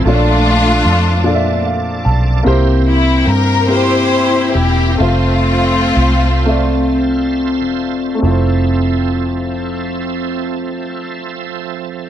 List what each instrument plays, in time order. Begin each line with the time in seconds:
Already playing: tonewheel organ F3
0.05 fingered electric bass A#1, upright piano A#2 A3 D4 F4 A4 C#5, string section A3 D4 F4, tonewheel organ A4 D5 A5
0.16 upright piano D5
0.86 fingered electric bass F2
1.24 upright piano A#2 D4 F4 A4 D5
1.35 upright piano E5
1.66 upright piano F5
2.05 fingered electric bass B1, upright piano A5
2.43 fingered electric bass C2, upright piano C3 A#3 C4 E4 G4, tonewheel organ G4 C5 E5 A#5
2.47 upright piano C5
2.87 string section E4
3.27 fingered electric bass G2, string section A#4
3.67 upright piano A#3 C4 E4 G4 A#4, string section E4 G4 C5
4.55 fingered electric bass E1, string section G4
4.98 fingered electric bass F1, upright piano A3 C4 F4 C5 E5, string section A3 C4 F4, tonewheel organ F4 A5
5.97 fingered electric bass C2
6.45 upright piano A3 C4 F4 D5 E5
7.61 fingered electric bass E1
8.15 upright piano A3 C4
8.22 fingered electric bass F1, upright piano F2 E4, tonewheel organ F3 C4 A4 E5
8.26 upright piano F4
8.30 upright piano C5